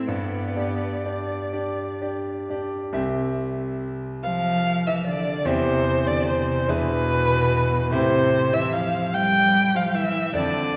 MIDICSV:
0, 0, Header, 1, 4, 480
1, 0, Start_track
1, 0, Key_signature, 0, "major"
1, 0, Tempo, 953895
1, 46, Time_signature, 6, 3, 24, 8
1, 1487, Tempo, 860832
1, 1967, Tempo, 823045
1, 4367, Tempo, 803213
1, 6062, End_track
2, 0, Start_track
2, 0, Title_t, "Violin"
2, 0, Program_c, 0, 40
2, 39, Note_on_c, 0, 74, 76
2, 1376, Note_off_c, 0, 74, 0
2, 2209, Note_on_c, 0, 77, 125
2, 2580, Note_on_c, 0, 76, 95
2, 2589, Note_off_c, 0, 77, 0
2, 2692, Note_off_c, 0, 76, 0
2, 2695, Note_on_c, 0, 74, 102
2, 2928, Note_on_c, 0, 72, 120
2, 2936, Note_off_c, 0, 74, 0
2, 3284, Note_on_c, 0, 74, 109
2, 3293, Note_off_c, 0, 72, 0
2, 3400, Note_off_c, 0, 74, 0
2, 3404, Note_on_c, 0, 72, 99
2, 3646, Note_on_c, 0, 71, 127
2, 3655, Note_off_c, 0, 72, 0
2, 4361, Note_off_c, 0, 71, 0
2, 4365, Note_on_c, 0, 72, 127
2, 4729, Note_on_c, 0, 76, 116
2, 4737, Note_off_c, 0, 72, 0
2, 4845, Note_on_c, 0, 77, 105
2, 4854, Note_off_c, 0, 76, 0
2, 5091, Note_on_c, 0, 79, 127
2, 5100, Note_off_c, 0, 77, 0
2, 5459, Note_on_c, 0, 77, 100
2, 5468, Note_off_c, 0, 79, 0
2, 5576, Note_on_c, 0, 76, 107
2, 5585, Note_off_c, 0, 77, 0
2, 5810, Note_off_c, 0, 76, 0
2, 5814, Note_on_c, 0, 74, 114
2, 6062, Note_off_c, 0, 74, 0
2, 6062, End_track
3, 0, Start_track
3, 0, Title_t, "Grand piano"
3, 0, Program_c, 1, 0
3, 0, Control_c, 1, 64, 127
3, 0, Note_on_c, 1, 45, 62
3, 0, Note_on_c, 1, 60, 52
3, 0, Note_on_c, 1, 64, 50
3, 0, Note_on_c, 1, 69, 54
3, 42, Note_on_c, 1, 43, 72
3, 58, Control_c, 1, 64, 0
3, 59, Note_off_c, 1, 64, 0
3, 60, Note_off_c, 1, 69, 0
3, 61, Note_off_c, 1, 45, 0
3, 63, Note_off_c, 1, 60, 0
3, 137, Control_c, 1, 64, 127
3, 277, Note_off_c, 1, 43, 0
3, 280, Note_on_c, 1, 62, 41
3, 281, Note_on_c, 1, 67, 42
3, 285, Note_on_c, 1, 74, 46
3, 504, Note_off_c, 1, 62, 0
3, 505, Note_off_c, 1, 67, 0
3, 507, Note_off_c, 1, 74, 0
3, 531, Note_on_c, 1, 62, 45
3, 531, Note_on_c, 1, 67, 47
3, 532, Note_on_c, 1, 74, 51
3, 751, Note_off_c, 1, 62, 0
3, 751, Note_off_c, 1, 67, 0
3, 752, Note_off_c, 1, 74, 0
3, 770, Note_on_c, 1, 62, 47
3, 770, Note_on_c, 1, 67, 46
3, 772, Note_on_c, 1, 74, 46
3, 992, Note_off_c, 1, 67, 0
3, 993, Note_off_c, 1, 62, 0
3, 994, Note_off_c, 1, 74, 0
3, 1014, Note_on_c, 1, 62, 41
3, 1015, Note_on_c, 1, 67, 49
3, 1017, Note_on_c, 1, 74, 44
3, 1237, Note_off_c, 1, 62, 0
3, 1237, Note_off_c, 1, 67, 0
3, 1238, Note_off_c, 1, 74, 0
3, 1254, Note_on_c, 1, 62, 48
3, 1260, Note_on_c, 1, 67, 48
3, 1260, Note_on_c, 1, 74, 51
3, 1466, Note_off_c, 1, 62, 0
3, 1468, Note_off_c, 1, 67, 0
3, 1468, Note_off_c, 1, 74, 0
3, 1473, Note_on_c, 1, 36, 73
3, 1475, Note_on_c, 1, 60, 61
3, 1478, Note_on_c, 1, 76, 64
3, 1479, Note_on_c, 1, 67, 61
3, 1498, Control_c, 1, 64, 0
3, 1602, Control_c, 1, 64, 127
3, 2903, Note_off_c, 1, 36, 0
3, 2903, Note_off_c, 1, 60, 0
3, 2905, Note_off_c, 1, 76, 0
3, 2906, Note_off_c, 1, 67, 0
3, 2921, Note_on_c, 1, 40, 82
3, 2926, Note_on_c, 1, 60, 61
3, 2930, Note_on_c, 1, 67, 64
3, 2932, Note_on_c, 1, 76, 65
3, 2943, Control_c, 1, 64, 0
3, 3042, Control_c, 1, 64, 127
3, 3619, Note_off_c, 1, 40, 0
3, 3621, Note_off_c, 1, 60, 0
3, 3623, Note_off_c, 1, 67, 0
3, 3624, Note_off_c, 1, 76, 0
3, 3638, Note_on_c, 1, 40, 73
3, 3640, Note_on_c, 1, 62, 58
3, 3643, Note_on_c, 1, 76, 56
3, 3645, Note_on_c, 1, 68, 65
3, 3658, Control_c, 1, 64, 0
3, 3767, Control_c, 1, 64, 127
3, 4343, Note_off_c, 1, 40, 0
3, 4344, Note_off_c, 1, 62, 0
3, 4345, Note_off_c, 1, 76, 0
3, 4346, Note_off_c, 1, 68, 0
3, 4355, Note_on_c, 1, 45, 84
3, 4360, Note_on_c, 1, 60, 68
3, 4362, Note_on_c, 1, 67, 62
3, 4362, Note_on_c, 1, 76, 65
3, 4380, Control_c, 1, 64, 0
3, 4485, Control_c, 1, 64, 127
3, 5780, Note_off_c, 1, 45, 0
3, 5783, Note_off_c, 1, 60, 0
3, 5784, Note_off_c, 1, 67, 0
3, 5784, Note_off_c, 1, 76, 0
3, 5803, Note_on_c, 1, 41, 72
3, 5806, Note_on_c, 1, 60, 64
3, 5810, Note_on_c, 1, 69, 67
3, 5812, Note_on_c, 1, 74, 68
3, 5822, Control_c, 1, 64, 0
3, 5912, Control_c, 1, 64, 127
3, 6062, Note_off_c, 1, 41, 0
3, 6062, Note_off_c, 1, 60, 0
3, 6062, Note_off_c, 1, 69, 0
3, 6062, Note_off_c, 1, 74, 0
3, 6062, End_track
4, 0, Start_track
4, 0, Title_t, "Cello"
4, 0, Program_c, 2, 42
4, 36, Note_on_c, 2, 59, 85
4, 765, Note_off_c, 2, 59, 0
4, 2209, Note_on_c, 2, 53, 105
4, 2580, Note_on_c, 2, 52, 79
4, 2589, Note_off_c, 2, 53, 0
4, 2701, Note_on_c, 2, 50, 86
4, 2710, Note_off_c, 2, 52, 0
4, 2935, Note_on_c, 2, 48, 100
4, 2944, Note_off_c, 2, 50, 0
4, 3289, Note_on_c, 2, 50, 82
4, 3297, Note_off_c, 2, 48, 0
4, 3405, Note_on_c, 2, 48, 91
4, 3414, Note_off_c, 2, 50, 0
4, 3662, Note_on_c, 2, 47, 110
4, 3670, Note_off_c, 2, 48, 0
4, 4368, Note_on_c, 2, 48, 106
4, 4377, Note_off_c, 2, 47, 0
4, 4730, Note_on_c, 2, 52, 94
4, 4739, Note_off_c, 2, 48, 0
4, 4860, Note_on_c, 2, 53, 86
4, 4868, Note_off_c, 2, 52, 0
4, 5090, Note_off_c, 2, 53, 0
4, 5094, Note_on_c, 2, 55, 112
4, 5452, Note_on_c, 2, 53, 95
4, 5461, Note_off_c, 2, 55, 0
4, 5571, Note_on_c, 2, 52, 99
4, 5580, Note_off_c, 2, 53, 0
4, 5809, Note_off_c, 2, 52, 0
4, 5812, Note_on_c, 2, 50, 95
4, 6062, Note_off_c, 2, 50, 0
4, 6062, End_track
0, 0, End_of_file